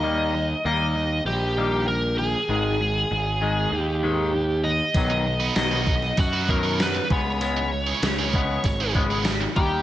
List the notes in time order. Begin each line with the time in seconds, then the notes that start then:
Already playing: D#2 D#5
0.03 D#3 G3 A#3
0.34 D#3 G3
0.65 D#2 D#3 G3 A#3 D#5
0.96 D#3 G3
1.25 A#1 D#3 G3 G4
1.57 D#3 G3 A#3
1.88 D#3 G3 A#4
2.18 D#3 G3 G#4
2.49 G#1 G#2 D#3 G#3
2.81 G#2 D#3
3.11 G#1 G#2 D#3
3.41 G#2 D#3 G#3
3.71 D#2 G#2 D#3
3.77 G4
4.03 G#2 D#3 G#3
4.34 G#2 D#3
4.64 G#2 D#3 D#5
4.94 B1 B2 D#3 F#3, kick, open hi-hat
5.10 muted distorted electric guitar stroke
5.26 B2 D#3
5.40 F#3 B3 D#4 B4
5.56 B1 B2 D#3 F#3 D#5, muted distorted electric guitar stroke, snare, open hi-hat
5.71 F#3 B3 D#4 B4
5.87 B2 D#3, kick
6.02 snare
6.17 F#2 B2 D#3 F#4, muted distorted electric guitar stroke, kick, open hi-hat
6.33 F#3 B3 D#4 B4
6.48 B2 D#3 F#3 A#4, kick
6.63 F#3 B3 D#4 B4
6.80 B2 D#3 B4, snare, open hi-hat
6.95 muted distorted electric guitar stroke
7.10 C#2 C#3 G#3 B3 C#5, kick
7.41 C#3 G#3 B3, open hi-hat
7.57 muted distorted electric guitar stroke
7.72 C#3 G#3
7.87 G#3 C#4 E4 G#4
8.02 C#2 C#3 G#3, muted distorted electric guitar stroke, snare, open hi-hat
8.19 G#3 C#4 E4 G#4
8.33 C#3 G#3 B3, kick
8.64 G#1 C#3 G#3, muted distorted electric guitar stroke, kick, open hi-hat
8.80 G#3 C#4 E4 G#4
8.95 C#3 G#3 B3, kick
9.10 G#3 C#4 E4 G#4
9.25 C#3 G#3, snare, open hi-hat
9.41 muted distorted electric guitar stroke
9.56 D#2 D#3 G3 A#3 G4, kick